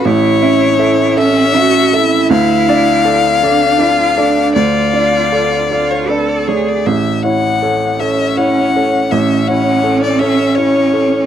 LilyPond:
<<
  \new Staff \with { instrumentName = "Violin" } { \time 6/8 \key a \major \tempo 4. = 53 cis''4. e''4. | f''2. | d''4.~ d''16 cis''16 b'16 d''16 cis''16 d''16 | e''8 fis''4 e''8 fis''4 |
e''8 fis''8. d''16 e''8 cis''4 | }
  \new Staff \with { instrumentName = "Grand piano" } { \time 6/8 \key a \major a,,8 <cis' e''>8 <a' e''>8 <a' e''>8 <cis' e''>8 <a' e''>8 | d,8 <d' d''>8 <a' d''>8 <a' d''>8 <d' d''>8 <a' d''>8 | d,8 <d' d''>8 <a' d''>8 <a' d''>8 <d' d''>8 <a d''>8 | a,,8 <e' cis''>8 <a' cis''>8 <a' cis''>8 <e' cis''>8 <a' cis''>8 |
a,,8 <e' cis''>8 <a' cis''>8 <a' cis''>8 <e' cis''>8 <a' cis''>8 | }
  \new Staff \with { instrumentName = "Cello" } { \time 6/8 \key a \major e'4. cis'8 fis'8 e'8~ | e'4. d'8 f'8 d'8 | f'4. f'8 a'8 gis'8 | r4. cis'4. |
cis'2. | }
>>